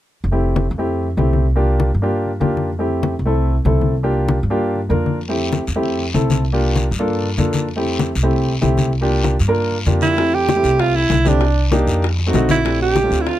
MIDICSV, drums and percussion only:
0, 0, Header, 1, 2, 480
1, 0, Start_track
1, 0, Key_signature, -1, "major"
1, 0, Tempo, 310078
1, 382, Time_signature, 4, 2, 24, 8
1, 20731, End_track
2, 0, Start_track
2, 0, Title_t, "Drums"
2, 387, Note_on_c, 9, 63, 30
2, 541, Note_off_c, 9, 63, 0
2, 626, Note_on_c, 9, 63, 30
2, 780, Note_off_c, 9, 63, 0
2, 867, Note_on_c, 9, 63, 85
2, 1022, Note_off_c, 9, 63, 0
2, 1115, Note_on_c, 9, 63, 30
2, 1270, Note_off_c, 9, 63, 0
2, 1348, Note_on_c, 9, 63, 31
2, 1503, Note_off_c, 9, 63, 0
2, 1598, Note_on_c, 9, 63, 27
2, 1752, Note_off_c, 9, 63, 0
2, 1831, Note_on_c, 9, 63, 72
2, 1985, Note_off_c, 9, 63, 0
2, 2062, Note_on_c, 9, 63, 70
2, 2217, Note_off_c, 9, 63, 0
2, 2307, Note_on_c, 9, 63, 30
2, 2462, Note_off_c, 9, 63, 0
2, 2541, Note_on_c, 9, 63, 30
2, 2696, Note_off_c, 9, 63, 0
2, 2782, Note_on_c, 9, 63, 79
2, 2937, Note_off_c, 9, 63, 0
2, 3027, Note_on_c, 9, 63, 30
2, 3182, Note_off_c, 9, 63, 0
2, 3263, Note_on_c, 9, 63, 34
2, 3418, Note_off_c, 9, 63, 0
2, 3500, Note_on_c, 9, 63, 29
2, 3654, Note_off_c, 9, 63, 0
2, 3735, Note_on_c, 9, 63, 73
2, 3890, Note_off_c, 9, 63, 0
2, 3979, Note_on_c, 9, 63, 71
2, 4134, Note_off_c, 9, 63, 0
2, 4217, Note_on_c, 9, 63, 32
2, 4371, Note_off_c, 9, 63, 0
2, 4457, Note_on_c, 9, 63, 31
2, 4611, Note_off_c, 9, 63, 0
2, 4691, Note_on_c, 9, 63, 81
2, 4846, Note_off_c, 9, 63, 0
2, 4945, Note_on_c, 9, 63, 30
2, 5100, Note_off_c, 9, 63, 0
2, 5184, Note_on_c, 9, 63, 34
2, 5339, Note_off_c, 9, 63, 0
2, 5424, Note_on_c, 9, 63, 30
2, 5579, Note_off_c, 9, 63, 0
2, 5661, Note_on_c, 9, 63, 75
2, 5816, Note_off_c, 9, 63, 0
2, 5904, Note_on_c, 9, 63, 73
2, 6059, Note_off_c, 9, 63, 0
2, 6156, Note_on_c, 9, 63, 31
2, 6311, Note_off_c, 9, 63, 0
2, 6404, Note_on_c, 9, 63, 31
2, 6559, Note_off_c, 9, 63, 0
2, 6634, Note_on_c, 9, 63, 86
2, 6788, Note_off_c, 9, 63, 0
2, 6874, Note_on_c, 9, 63, 30
2, 7029, Note_off_c, 9, 63, 0
2, 7119, Note_on_c, 9, 63, 32
2, 7273, Note_off_c, 9, 63, 0
2, 7359, Note_on_c, 9, 63, 29
2, 7514, Note_off_c, 9, 63, 0
2, 7603, Note_on_c, 9, 63, 72
2, 7758, Note_off_c, 9, 63, 0
2, 7836, Note_on_c, 9, 63, 74
2, 7990, Note_off_c, 9, 63, 0
2, 8069, Note_on_c, 9, 63, 31
2, 8069, Note_on_c, 9, 74, 64
2, 8223, Note_off_c, 9, 74, 0
2, 8224, Note_off_c, 9, 63, 0
2, 8322, Note_on_c, 9, 63, 32
2, 8476, Note_off_c, 9, 63, 0
2, 8542, Note_on_c, 9, 73, 60
2, 8553, Note_on_c, 9, 63, 82
2, 8696, Note_off_c, 9, 73, 0
2, 8708, Note_off_c, 9, 63, 0
2, 8782, Note_on_c, 9, 73, 65
2, 8800, Note_on_c, 9, 63, 32
2, 8937, Note_off_c, 9, 73, 0
2, 8955, Note_off_c, 9, 63, 0
2, 9028, Note_on_c, 9, 63, 34
2, 9030, Note_on_c, 9, 74, 62
2, 9183, Note_off_c, 9, 63, 0
2, 9185, Note_off_c, 9, 74, 0
2, 9273, Note_on_c, 9, 63, 28
2, 9427, Note_off_c, 9, 63, 0
2, 9513, Note_on_c, 9, 63, 74
2, 9516, Note_on_c, 9, 73, 60
2, 9668, Note_off_c, 9, 63, 0
2, 9670, Note_off_c, 9, 73, 0
2, 9753, Note_on_c, 9, 73, 62
2, 9754, Note_on_c, 9, 63, 70
2, 9907, Note_off_c, 9, 73, 0
2, 9908, Note_off_c, 9, 63, 0
2, 9980, Note_on_c, 9, 74, 66
2, 9991, Note_on_c, 9, 63, 31
2, 10135, Note_off_c, 9, 74, 0
2, 10146, Note_off_c, 9, 63, 0
2, 10233, Note_on_c, 9, 63, 30
2, 10388, Note_off_c, 9, 63, 0
2, 10462, Note_on_c, 9, 63, 80
2, 10468, Note_on_c, 9, 73, 62
2, 10617, Note_off_c, 9, 63, 0
2, 10622, Note_off_c, 9, 73, 0
2, 10701, Note_on_c, 9, 63, 32
2, 10714, Note_on_c, 9, 73, 67
2, 10855, Note_off_c, 9, 63, 0
2, 10869, Note_off_c, 9, 73, 0
2, 10956, Note_on_c, 9, 63, 34
2, 10959, Note_on_c, 9, 74, 66
2, 11111, Note_off_c, 9, 63, 0
2, 11114, Note_off_c, 9, 74, 0
2, 11186, Note_on_c, 9, 63, 30
2, 11341, Note_off_c, 9, 63, 0
2, 11415, Note_on_c, 9, 73, 63
2, 11428, Note_on_c, 9, 63, 78
2, 11569, Note_off_c, 9, 73, 0
2, 11582, Note_off_c, 9, 63, 0
2, 11656, Note_on_c, 9, 73, 65
2, 11671, Note_on_c, 9, 63, 76
2, 11811, Note_off_c, 9, 73, 0
2, 11826, Note_off_c, 9, 63, 0
2, 11897, Note_on_c, 9, 74, 61
2, 11901, Note_on_c, 9, 63, 31
2, 12051, Note_off_c, 9, 74, 0
2, 12056, Note_off_c, 9, 63, 0
2, 12135, Note_on_c, 9, 63, 32
2, 12290, Note_off_c, 9, 63, 0
2, 12375, Note_on_c, 9, 63, 84
2, 12375, Note_on_c, 9, 73, 63
2, 12529, Note_off_c, 9, 63, 0
2, 12529, Note_off_c, 9, 73, 0
2, 12619, Note_on_c, 9, 63, 31
2, 12623, Note_on_c, 9, 73, 67
2, 12773, Note_off_c, 9, 63, 0
2, 12778, Note_off_c, 9, 73, 0
2, 12861, Note_on_c, 9, 63, 34
2, 12863, Note_on_c, 9, 74, 67
2, 13016, Note_off_c, 9, 63, 0
2, 13018, Note_off_c, 9, 74, 0
2, 13109, Note_on_c, 9, 63, 29
2, 13264, Note_off_c, 9, 63, 0
2, 13346, Note_on_c, 9, 73, 63
2, 13347, Note_on_c, 9, 63, 73
2, 13501, Note_off_c, 9, 73, 0
2, 13502, Note_off_c, 9, 63, 0
2, 13579, Note_on_c, 9, 63, 79
2, 13587, Note_on_c, 9, 73, 61
2, 13734, Note_off_c, 9, 63, 0
2, 13742, Note_off_c, 9, 73, 0
2, 13817, Note_on_c, 9, 63, 33
2, 13821, Note_on_c, 9, 74, 65
2, 13972, Note_off_c, 9, 63, 0
2, 13976, Note_off_c, 9, 74, 0
2, 14058, Note_on_c, 9, 63, 31
2, 14213, Note_off_c, 9, 63, 0
2, 14306, Note_on_c, 9, 63, 84
2, 14308, Note_on_c, 9, 73, 63
2, 14461, Note_off_c, 9, 63, 0
2, 14462, Note_off_c, 9, 73, 0
2, 14544, Note_on_c, 9, 73, 63
2, 14551, Note_on_c, 9, 63, 31
2, 14699, Note_off_c, 9, 73, 0
2, 14706, Note_off_c, 9, 63, 0
2, 14778, Note_on_c, 9, 74, 66
2, 14789, Note_on_c, 9, 63, 34
2, 14933, Note_off_c, 9, 74, 0
2, 14943, Note_off_c, 9, 63, 0
2, 15031, Note_on_c, 9, 63, 29
2, 15186, Note_off_c, 9, 63, 0
2, 15257, Note_on_c, 9, 73, 63
2, 15275, Note_on_c, 9, 63, 77
2, 15412, Note_off_c, 9, 73, 0
2, 15430, Note_off_c, 9, 63, 0
2, 15496, Note_on_c, 9, 73, 66
2, 15513, Note_on_c, 9, 63, 72
2, 15650, Note_off_c, 9, 73, 0
2, 15668, Note_off_c, 9, 63, 0
2, 15737, Note_on_c, 9, 74, 62
2, 15750, Note_on_c, 9, 63, 33
2, 15761, Note_on_c, 9, 60, 64
2, 15892, Note_off_c, 9, 74, 0
2, 15904, Note_off_c, 9, 63, 0
2, 15916, Note_off_c, 9, 60, 0
2, 15999, Note_on_c, 9, 63, 31
2, 16154, Note_off_c, 9, 63, 0
2, 16231, Note_on_c, 9, 63, 83
2, 16231, Note_on_c, 9, 73, 60
2, 16237, Note_on_c, 9, 60, 57
2, 16386, Note_off_c, 9, 63, 0
2, 16386, Note_off_c, 9, 73, 0
2, 16392, Note_off_c, 9, 60, 0
2, 16470, Note_on_c, 9, 73, 66
2, 16477, Note_on_c, 9, 60, 33
2, 16477, Note_on_c, 9, 63, 32
2, 16625, Note_off_c, 9, 73, 0
2, 16632, Note_off_c, 9, 60, 0
2, 16632, Note_off_c, 9, 63, 0
2, 16707, Note_on_c, 9, 74, 66
2, 16711, Note_on_c, 9, 60, 63
2, 16711, Note_on_c, 9, 63, 31
2, 16862, Note_off_c, 9, 74, 0
2, 16865, Note_off_c, 9, 60, 0
2, 16866, Note_off_c, 9, 63, 0
2, 16948, Note_on_c, 9, 60, 31
2, 16950, Note_on_c, 9, 63, 30
2, 17103, Note_off_c, 9, 60, 0
2, 17105, Note_off_c, 9, 63, 0
2, 17181, Note_on_c, 9, 60, 32
2, 17181, Note_on_c, 9, 61, 82
2, 17186, Note_on_c, 9, 63, 77
2, 17192, Note_on_c, 9, 73, 62
2, 17336, Note_off_c, 9, 60, 0
2, 17336, Note_off_c, 9, 61, 0
2, 17341, Note_off_c, 9, 63, 0
2, 17347, Note_off_c, 9, 73, 0
2, 17423, Note_on_c, 9, 73, 66
2, 17425, Note_on_c, 9, 60, 30
2, 17426, Note_on_c, 9, 63, 74
2, 17578, Note_off_c, 9, 73, 0
2, 17580, Note_off_c, 9, 60, 0
2, 17581, Note_off_c, 9, 63, 0
2, 17658, Note_on_c, 9, 60, 63
2, 17666, Note_on_c, 9, 63, 33
2, 17669, Note_on_c, 9, 74, 62
2, 17813, Note_off_c, 9, 60, 0
2, 17821, Note_off_c, 9, 63, 0
2, 17823, Note_off_c, 9, 74, 0
2, 17898, Note_on_c, 9, 63, 32
2, 18052, Note_off_c, 9, 63, 0
2, 18138, Note_on_c, 9, 63, 83
2, 18145, Note_on_c, 9, 73, 62
2, 18149, Note_on_c, 9, 60, 54
2, 18292, Note_off_c, 9, 63, 0
2, 18299, Note_off_c, 9, 73, 0
2, 18304, Note_off_c, 9, 60, 0
2, 18378, Note_on_c, 9, 63, 34
2, 18382, Note_on_c, 9, 73, 64
2, 18393, Note_on_c, 9, 60, 34
2, 18533, Note_off_c, 9, 63, 0
2, 18537, Note_off_c, 9, 73, 0
2, 18548, Note_off_c, 9, 60, 0
2, 18613, Note_on_c, 9, 74, 66
2, 18620, Note_on_c, 9, 63, 32
2, 18641, Note_on_c, 9, 60, 67
2, 18768, Note_off_c, 9, 74, 0
2, 18775, Note_off_c, 9, 63, 0
2, 18796, Note_off_c, 9, 60, 0
2, 18862, Note_on_c, 9, 63, 30
2, 18866, Note_on_c, 9, 60, 32
2, 19017, Note_off_c, 9, 63, 0
2, 19021, Note_off_c, 9, 60, 0
2, 19090, Note_on_c, 9, 63, 75
2, 19090, Note_on_c, 9, 73, 66
2, 19116, Note_on_c, 9, 60, 34
2, 19116, Note_on_c, 9, 61, 76
2, 19245, Note_off_c, 9, 63, 0
2, 19245, Note_off_c, 9, 73, 0
2, 19271, Note_off_c, 9, 60, 0
2, 19271, Note_off_c, 9, 61, 0
2, 19333, Note_on_c, 9, 73, 65
2, 19337, Note_on_c, 9, 63, 77
2, 19356, Note_on_c, 9, 60, 29
2, 19488, Note_off_c, 9, 73, 0
2, 19492, Note_off_c, 9, 63, 0
2, 19510, Note_off_c, 9, 60, 0
2, 19581, Note_on_c, 9, 74, 65
2, 19592, Note_on_c, 9, 60, 65
2, 19736, Note_off_c, 9, 74, 0
2, 19747, Note_off_c, 9, 60, 0
2, 19822, Note_on_c, 9, 63, 30
2, 19976, Note_off_c, 9, 63, 0
2, 20056, Note_on_c, 9, 60, 53
2, 20056, Note_on_c, 9, 63, 82
2, 20056, Note_on_c, 9, 73, 63
2, 20211, Note_off_c, 9, 60, 0
2, 20211, Note_off_c, 9, 63, 0
2, 20211, Note_off_c, 9, 73, 0
2, 20295, Note_on_c, 9, 60, 34
2, 20306, Note_on_c, 9, 73, 65
2, 20310, Note_on_c, 9, 63, 32
2, 20449, Note_off_c, 9, 60, 0
2, 20461, Note_off_c, 9, 73, 0
2, 20465, Note_off_c, 9, 63, 0
2, 20531, Note_on_c, 9, 74, 66
2, 20537, Note_on_c, 9, 60, 63
2, 20550, Note_on_c, 9, 63, 34
2, 20686, Note_off_c, 9, 74, 0
2, 20692, Note_off_c, 9, 60, 0
2, 20704, Note_off_c, 9, 63, 0
2, 20731, End_track
0, 0, End_of_file